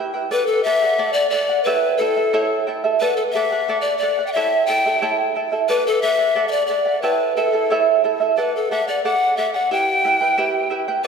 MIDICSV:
0, 0, Header, 1, 3, 480
1, 0, Start_track
1, 0, Tempo, 670391
1, 228, Time_signature, 2, 2, 24, 8
1, 7926, End_track
2, 0, Start_track
2, 0, Title_t, "Charango"
2, 0, Program_c, 0, 24
2, 0, Note_on_c, 0, 64, 66
2, 0, Note_on_c, 0, 71, 62
2, 0, Note_on_c, 0, 76, 64
2, 0, Note_on_c, 0, 79, 65
2, 89, Note_off_c, 0, 79, 0
2, 95, Note_off_c, 0, 71, 0
2, 98, Note_on_c, 0, 79, 56
2, 101, Note_off_c, 0, 64, 0
2, 103, Note_on_c, 0, 71, 48
2, 104, Note_off_c, 0, 76, 0
2, 109, Note_on_c, 0, 64, 48
2, 219, Note_off_c, 0, 71, 0
2, 222, Note_on_c, 0, 69, 72
2, 222, Note_on_c, 0, 74, 67
2, 223, Note_off_c, 0, 79, 0
2, 229, Note_off_c, 0, 64, 0
2, 230, Note_on_c, 0, 78, 85
2, 461, Note_off_c, 0, 69, 0
2, 466, Note_off_c, 0, 74, 0
2, 470, Note_off_c, 0, 78, 0
2, 470, Note_on_c, 0, 69, 64
2, 475, Note_on_c, 0, 74, 72
2, 479, Note_on_c, 0, 78, 78
2, 582, Note_off_c, 0, 78, 0
2, 590, Note_off_c, 0, 69, 0
2, 591, Note_on_c, 0, 78, 61
2, 593, Note_off_c, 0, 74, 0
2, 603, Note_on_c, 0, 74, 51
2, 701, Note_off_c, 0, 74, 0
2, 702, Note_off_c, 0, 78, 0
2, 704, Note_on_c, 0, 69, 84
2, 710, Note_on_c, 0, 74, 93
2, 710, Note_on_c, 0, 78, 90
2, 940, Note_off_c, 0, 69, 0
2, 945, Note_off_c, 0, 74, 0
2, 949, Note_on_c, 0, 69, 58
2, 951, Note_off_c, 0, 78, 0
2, 954, Note_on_c, 0, 74, 57
2, 959, Note_on_c, 0, 78, 62
2, 1060, Note_off_c, 0, 78, 0
2, 1069, Note_on_c, 0, 78, 59
2, 1071, Note_off_c, 0, 69, 0
2, 1073, Note_off_c, 0, 74, 0
2, 1080, Note_on_c, 0, 74, 46
2, 1189, Note_on_c, 0, 73, 82
2, 1191, Note_off_c, 0, 78, 0
2, 1192, Note_on_c, 0, 79, 86
2, 1193, Note_off_c, 0, 74, 0
2, 1194, Note_on_c, 0, 64, 83
2, 1196, Note_on_c, 0, 69, 84
2, 1196, Note_on_c, 0, 76, 91
2, 1421, Note_off_c, 0, 79, 0
2, 1428, Note_off_c, 0, 64, 0
2, 1429, Note_on_c, 0, 79, 68
2, 1430, Note_off_c, 0, 69, 0
2, 1431, Note_off_c, 0, 73, 0
2, 1435, Note_off_c, 0, 76, 0
2, 1437, Note_on_c, 0, 64, 79
2, 1439, Note_on_c, 0, 69, 75
2, 1443, Note_on_c, 0, 76, 72
2, 1539, Note_off_c, 0, 76, 0
2, 1547, Note_off_c, 0, 69, 0
2, 1547, Note_on_c, 0, 76, 61
2, 1551, Note_off_c, 0, 64, 0
2, 1551, Note_off_c, 0, 79, 0
2, 1555, Note_on_c, 0, 69, 57
2, 1559, Note_on_c, 0, 64, 53
2, 1665, Note_off_c, 0, 69, 0
2, 1666, Note_off_c, 0, 64, 0
2, 1666, Note_off_c, 0, 76, 0
2, 1670, Note_on_c, 0, 73, 91
2, 1673, Note_on_c, 0, 79, 97
2, 1674, Note_on_c, 0, 69, 88
2, 1675, Note_on_c, 0, 64, 91
2, 1675, Note_on_c, 0, 76, 88
2, 1902, Note_off_c, 0, 79, 0
2, 1907, Note_off_c, 0, 64, 0
2, 1910, Note_off_c, 0, 69, 0
2, 1910, Note_on_c, 0, 79, 62
2, 1912, Note_off_c, 0, 73, 0
2, 1914, Note_off_c, 0, 76, 0
2, 1916, Note_on_c, 0, 64, 66
2, 1919, Note_on_c, 0, 69, 59
2, 1922, Note_on_c, 0, 76, 64
2, 2024, Note_off_c, 0, 76, 0
2, 2030, Note_off_c, 0, 69, 0
2, 2032, Note_off_c, 0, 79, 0
2, 2033, Note_on_c, 0, 76, 59
2, 2035, Note_off_c, 0, 64, 0
2, 2039, Note_on_c, 0, 69, 50
2, 2043, Note_on_c, 0, 64, 51
2, 2149, Note_off_c, 0, 69, 0
2, 2154, Note_off_c, 0, 76, 0
2, 2155, Note_off_c, 0, 64, 0
2, 2158, Note_on_c, 0, 69, 76
2, 2162, Note_on_c, 0, 74, 80
2, 2165, Note_on_c, 0, 78, 89
2, 2388, Note_off_c, 0, 69, 0
2, 2394, Note_off_c, 0, 74, 0
2, 2397, Note_on_c, 0, 69, 77
2, 2400, Note_off_c, 0, 78, 0
2, 2404, Note_on_c, 0, 74, 77
2, 2410, Note_on_c, 0, 78, 87
2, 2512, Note_off_c, 0, 78, 0
2, 2516, Note_off_c, 0, 69, 0
2, 2519, Note_off_c, 0, 74, 0
2, 2521, Note_on_c, 0, 78, 69
2, 2528, Note_on_c, 0, 74, 52
2, 2636, Note_off_c, 0, 74, 0
2, 2638, Note_off_c, 0, 78, 0
2, 2639, Note_on_c, 0, 69, 86
2, 2645, Note_on_c, 0, 74, 93
2, 2646, Note_on_c, 0, 78, 90
2, 2871, Note_off_c, 0, 69, 0
2, 2873, Note_off_c, 0, 74, 0
2, 2878, Note_off_c, 0, 78, 0
2, 2879, Note_on_c, 0, 69, 53
2, 2882, Note_on_c, 0, 74, 65
2, 2886, Note_on_c, 0, 78, 72
2, 2990, Note_off_c, 0, 78, 0
2, 2997, Note_off_c, 0, 69, 0
2, 2998, Note_off_c, 0, 74, 0
2, 2998, Note_on_c, 0, 78, 56
2, 3008, Note_on_c, 0, 74, 53
2, 3117, Note_off_c, 0, 78, 0
2, 3119, Note_on_c, 0, 73, 74
2, 3121, Note_off_c, 0, 74, 0
2, 3123, Note_on_c, 0, 79, 88
2, 3125, Note_on_c, 0, 64, 80
2, 3127, Note_on_c, 0, 69, 76
2, 3127, Note_on_c, 0, 76, 77
2, 3345, Note_off_c, 0, 79, 0
2, 3352, Note_off_c, 0, 64, 0
2, 3353, Note_off_c, 0, 69, 0
2, 3353, Note_on_c, 0, 79, 59
2, 3357, Note_off_c, 0, 73, 0
2, 3358, Note_off_c, 0, 76, 0
2, 3360, Note_on_c, 0, 64, 66
2, 3362, Note_on_c, 0, 69, 70
2, 3366, Note_on_c, 0, 76, 81
2, 3470, Note_off_c, 0, 76, 0
2, 3474, Note_off_c, 0, 69, 0
2, 3474, Note_off_c, 0, 79, 0
2, 3478, Note_off_c, 0, 64, 0
2, 3478, Note_on_c, 0, 76, 60
2, 3482, Note_on_c, 0, 69, 55
2, 3486, Note_on_c, 0, 64, 51
2, 3587, Note_off_c, 0, 64, 0
2, 3590, Note_off_c, 0, 69, 0
2, 3590, Note_off_c, 0, 76, 0
2, 3592, Note_on_c, 0, 73, 77
2, 3595, Note_on_c, 0, 64, 85
2, 3596, Note_on_c, 0, 79, 79
2, 3599, Note_on_c, 0, 69, 92
2, 3599, Note_on_c, 0, 76, 85
2, 3823, Note_off_c, 0, 79, 0
2, 3828, Note_off_c, 0, 64, 0
2, 3830, Note_off_c, 0, 69, 0
2, 3832, Note_on_c, 0, 79, 54
2, 3833, Note_off_c, 0, 73, 0
2, 3834, Note_off_c, 0, 76, 0
2, 3836, Note_on_c, 0, 64, 60
2, 3839, Note_on_c, 0, 69, 59
2, 3843, Note_on_c, 0, 76, 64
2, 3942, Note_off_c, 0, 76, 0
2, 3947, Note_off_c, 0, 69, 0
2, 3949, Note_off_c, 0, 64, 0
2, 3951, Note_on_c, 0, 76, 53
2, 3953, Note_off_c, 0, 79, 0
2, 3956, Note_on_c, 0, 69, 52
2, 3958, Note_on_c, 0, 64, 47
2, 4066, Note_off_c, 0, 69, 0
2, 4073, Note_off_c, 0, 76, 0
2, 4074, Note_on_c, 0, 69, 73
2, 4076, Note_off_c, 0, 64, 0
2, 4079, Note_on_c, 0, 74, 77
2, 4082, Note_on_c, 0, 78, 70
2, 4306, Note_off_c, 0, 69, 0
2, 4312, Note_off_c, 0, 74, 0
2, 4315, Note_on_c, 0, 69, 67
2, 4318, Note_off_c, 0, 78, 0
2, 4321, Note_on_c, 0, 74, 69
2, 4328, Note_on_c, 0, 78, 76
2, 4420, Note_off_c, 0, 78, 0
2, 4428, Note_on_c, 0, 78, 54
2, 4432, Note_off_c, 0, 74, 0
2, 4435, Note_off_c, 0, 69, 0
2, 4441, Note_on_c, 0, 74, 51
2, 4546, Note_off_c, 0, 74, 0
2, 4549, Note_off_c, 0, 78, 0
2, 4549, Note_on_c, 0, 69, 85
2, 4554, Note_on_c, 0, 74, 86
2, 4557, Note_on_c, 0, 78, 89
2, 4782, Note_off_c, 0, 69, 0
2, 4787, Note_off_c, 0, 74, 0
2, 4791, Note_on_c, 0, 69, 60
2, 4794, Note_off_c, 0, 78, 0
2, 4796, Note_on_c, 0, 74, 61
2, 4802, Note_on_c, 0, 78, 65
2, 4901, Note_off_c, 0, 78, 0
2, 4910, Note_on_c, 0, 78, 50
2, 4913, Note_off_c, 0, 69, 0
2, 4915, Note_off_c, 0, 74, 0
2, 4924, Note_on_c, 0, 74, 49
2, 5029, Note_on_c, 0, 73, 79
2, 5032, Note_off_c, 0, 78, 0
2, 5034, Note_off_c, 0, 74, 0
2, 5035, Note_on_c, 0, 64, 73
2, 5036, Note_on_c, 0, 79, 80
2, 5037, Note_on_c, 0, 69, 76
2, 5040, Note_on_c, 0, 76, 80
2, 5267, Note_off_c, 0, 79, 0
2, 5269, Note_off_c, 0, 64, 0
2, 5270, Note_off_c, 0, 69, 0
2, 5271, Note_off_c, 0, 73, 0
2, 5272, Note_off_c, 0, 76, 0
2, 5275, Note_on_c, 0, 79, 70
2, 5278, Note_on_c, 0, 64, 62
2, 5279, Note_on_c, 0, 69, 84
2, 5281, Note_on_c, 0, 76, 76
2, 5383, Note_off_c, 0, 76, 0
2, 5389, Note_off_c, 0, 69, 0
2, 5391, Note_on_c, 0, 76, 63
2, 5392, Note_off_c, 0, 64, 0
2, 5394, Note_off_c, 0, 79, 0
2, 5398, Note_on_c, 0, 69, 60
2, 5401, Note_on_c, 0, 64, 54
2, 5512, Note_off_c, 0, 76, 0
2, 5513, Note_off_c, 0, 64, 0
2, 5515, Note_on_c, 0, 73, 88
2, 5516, Note_off_c, 0, 69, 0
2, 5520, Note_on_c, 0, 79, 74
2, 5522, Note_on_c, 0, 64, 83
2, 5524, Note_on_c, 0, 69, 81
2, 5526, Note_on_c, 0, 76, 91
2, 5747, Note_off_c, 0, 79, 0
2, 5749, Note_off_c, 0, 64, 0
2, 5754, Note_off_c, 0, 69, 0
2, 5754, Note_off_c, 0, 73, 0
2, 5755, Note_on_c, 0, 79, 58
2, 5758, Note_off_c, 0, 76, 0
2, 5758, Note_on_c, 0, 64, 63
2, 5762, Note_on_c, 0, 69, 62
2, 5766, Note_on_c, 0, 76, 74
2, 5864, Note_off_c, 0, 76, 0
2, 5872, Note_on_c, 0, 76, 58
2, 5873, Note_off_c, 0, 69, 0
2, 5874, Note_off_c, 0, 79, 0
2, 5875, Note_off_c, 0, 64, 0
2, 5881, Note_on_c, 0, 69, 52
2, 5884, Note_on_c, 0, 64, 54
2, 5986, Note_off_c, 0, 69, 0
2, 5993, Note_off_c, 0, 76, 0
2, 5995, Note_on_c, 0, 69, 76
2, 5998, Note_off_c, 0, 64, 0
2, 5998, Note_on_c, 0, 74, 79
2, 6003, Note_on_c, 0, 78, 85
2, 6228, Note_off_c, 0, 69, 0
2, 6233, Note_off_c, 0, 74, 0
2, 6236, Note_off_c, 0, 78, 0
2, 6237, Note_on_c, 0, 69, 78
2, 6241, Note_on_c, 0, 74, 73
2, 6245, Note_on_c, 0, 78, 81
2, 6347, Note_off_c, 0, 78, 0
2, 6355, Note_off_c, 0, 69, 0
2, 6356, Note_on_c, 0, 78, 64
2, 6357, Note_off_c, 0, 74, 0
2, 6366, Note_on_c, 0, 74, 56
2, 6473, Note_off_c, 0, 74, 0
2, 6474, Note_off_c, 0, 78, 0
2, 6479, Note_on_c, 0, 69, 89
2, 6482, Note_on_c, 0, 74, 84
2, 6482, Note_on_c, 0, 78, 96
2, 6707, Note_off_c, 0, 69, 0
2, 6714, Note_off_c, 0, 74, 0
2, 6715, Note_on_c, 0, 69, 63
2, 6717, Note_off_c, 0, 78, 0
2, 6723, Note_on_c, 0, 74, 59
2, 6725, Note_on_c, 0, 78, 67
2, 6824, Note_off_c, 0, 78, 0
2, 6832, Note_on_c, 0, 78, 59
2, 6833, Note_off_c, 0, 69, 0
2, 6835, Note_off_c, 0, 74, 0
2, 6843, Note_on_c, 0, 74, 47
2, 6952, Note_off_c, 0, 74, 0
2, 6952, Note_off_c, 0, 78, 0
2, 6953, Note_on_c, 0, 64, 80
2, 6953, Note_on_c, 0, 67, 73
2, 6953, Note_on_c, 0, 76, 82
2, 6955, Note_on_c, 0, 71, 76
2, 6959, Note_on_c, 0, 79, 83
2, 7183, Note_off_c, 0, 76, 0
2, 7187, Note_off_c, 0, 64, 0
2, 7192, Note_off_c, 0, 67, 0
2, 7192, Note_off_c, 0, 71, 0
2, 7192, Note_off_c, 0, 79, 0
2, 7192, Note_on_c, 0, 76, 68
2, 7195, Note_on_c, 0, 64, 75
2, 7200, Note_on_c, 0, 71, 69
2, 7200, Note_on_c, 0, 79, 71
2, 7298, Note_off_c, 0, 79, 0
2, 7305, Note_off_c, 0, 71, 0
2, 7306, Note_on_c, 0, 79, 62
2, 7310, Note_off_c, 0, 64, 0
2, 7311, Note_off_c, 0, 76, 0
2, 7314, Note_on_c, 0, 71, 60
2, 7318, Note_on_c, 0, 64, 48
2, 7423, Note_off_c, 0, 64, 0
2, 7426, Note_off_c, 0, 71, 0
2, 7428, Note_off_c, 0, 79, 0
2, 7429, Note_on_c, 0, 67, 78
2, 7429, Note_on_c, 0, 76, 90
2, 7432, Note_on_c, 0, 64, 74
2, 7435, Note_on_c, 0, 71, 89
2, 7437, Note_on_c, 0, 79, 93
2, 7653, Note_off_c, 0, 76, 0
2, 7658, Note_off_c, 0, 64, 0
2, 7660, Note_off_c, 0, 71, 0
2, 7661, Note_on_c, 0, 76, 60
2, 7667, Note_off_c, 0, 79, 0
2, 7667, Note_on_c, 0, 64, 65
2, 7668, Note_on_c, 0, 71, 68
2, 7669, Note_off_c, 0, 67, 0
2, 7675, Note_on_c, 0, 79, 66
2, 7782, Note_off_c, 0, 79, 0
2, 7785, Note_off_c, 0, 71, 0
2, 7785, Note_off_c, 0, 76, 0
2, 7788, Note_off_c, 0, 64, 0
2, 7790, Note_on_c, 0, 79, 62
2, 7793, Note_on_c, 0, 71, 55
2, 7798, Note_on_c, 0, 64, 45
2, 7900, Note_off_c, 0, 71, 0
2, 7903, Note_on_c, 0, 69, 73
2, 7906, Note_off_c, 0, 79, 0
2, 7913, Note_off_c, 0, 64, 0
2, 7926, Note_off_c, 0, 69, 0
2, 7926, End_track
3, 0, Start_track
3, 0, Title_t, "Pan flute"
3, 0, Program_c, 1, 75
3, 228, Note_on_c, 1, 71, 104
3, 333, Note_on_c, 1, 69, 106
3, 343, Note_off_c, 1, 71, 0
3, 454, Note_on_c, 1, 76, 127
3, 465, Note_off_c, 1, 69, 0
3, 809, Note_on_c, 1, 74, 108
3, 820, Note_off_c, 1, 76, 0
3, 927, Note_off_c, 1, 74, 0
3, 931, Note_on_c, 1, 74, 96
3, 1165, Note_off_c, 1, 74, 0
3, 1173, Note_on_c, 1, 71, 102
3, 1406, Note_off_c, 1, 71, 0
3, 1415, Note_on_c, 1, 69, 82
3, 1876, Note_off_c, 1, 69, 0
3, 2151, Note_on_c, 1, 71, 97
3, 2262, Note_off_c, 1, 71, 0
3, 2267, Note_on_c, 1, 69, 84
3, 2310, Note_off_c, 1, 69, 0
3, 2381, Note_on_c, 1, 76, 108
3, 2723, Note_off_c, 1, 76, 0
3, 2730, Note_on_c, 1, 74, 94
3, 2842, Note_off_c, 1, 74, 0
3, 2846, Note_on_c, 1, 74, 100
3, 3037, Note_off_c, 1, 74, 0
3, 3055, Note_on_c, 1, 79, 66
3, 3097, Note_on_c, 1, 76, 107
3, 3108, Note_off_c, 1, 79, 0
3, 3334, Note_off_c, 1, 76, 0
3, 3339, Note_on_c, 1, 79, 114
3, 3798, Note_off_c, 1, 79, 0
3, 4072, Note_on_c, 1, 71, 107
3, 4200, Note_on_c, 1, 69, 101
3, 4211, Note_off_c, 1, 71, 0
3, 4309, Note_on_c, 1, 76, 117
3, 4320, Note_off_c, 1, 69, 0
3, 4641, Note_off_c, 1, 76, 0
3, 4641, Note_on_c, 1, 76, 68
3, 4655, Note_on_c, 1, 74, 102
3, 4666, Note_off_c, 1, 76, 0
3, 4767, Note_off_c, 1, 74, 0
3, 4772, Note_on_c, 1, 74, 91
3, 5025, Note_on_c, 1, 71, 101
3, 5036, Note_off_c, 1, 74, 0
3, 5269, Note_off_c, 1, 71, 0
3, 5273, Note_on_c, 1, 69, 82
3, 5724, Note_off_c, 1, 69, 0
3, 5992, Note_on_c, 1, 71, 84
3, 6127, Note_on_c, 1, 69, 85
3, 6138, Note_off_c, 1, 71, 0
3, 6238, Note_on_c, 1, 76, 92
3, 6249, Note_off_c, 1, 69, 0
3, 6352, Note_off_c, 1, 76, 0
3, 6357, Note_on_c, 1, 74, 89
3, 6466, Note_off_c, 1, 74, 0
3, 6478, Note_on_c, 1, 78, 106
3, 6709, Note_on_c, 1, 76, 97
3, 6719, Note_off_c, 1, 78, 0
3, 6822, Note_off_c, 1, 76, 0
3, 6827, Note_on_c, 1, 78, 97
3, 6960, Note_on_c, 1, 79, 118
3, 6970, Note_off_c, 1, 78, 0
3, 7674, Note_off_c, 1, 79, 0
3, 7926, End_track
0, 0, End_of_file